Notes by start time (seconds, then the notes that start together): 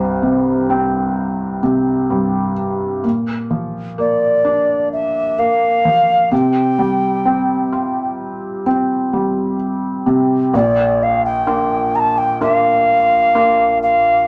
Already playing: C2 G2 C5
0.23 C3
0.70 C4
1.63 C3
2.10 G2
3.04 A#2
3.50 F3
3.98 A#3 D5
4.45 D4
4.93 E5
5.38 A#3 F5
5.85 F3
6.32 C3 G5
6.79 G3
7.25 C4
7.72 F4
8.66 C4
9.13 G3
10.06 C3
10.53 A#1 A#2 D5
11.03 F5
11.25 G5
11.46 A#3 D4 F4
11.96 A5 A#5
12.18 G5
12.41 A#3 D4 F4 F5
13.35 A#3 D4 F4
13.83 F5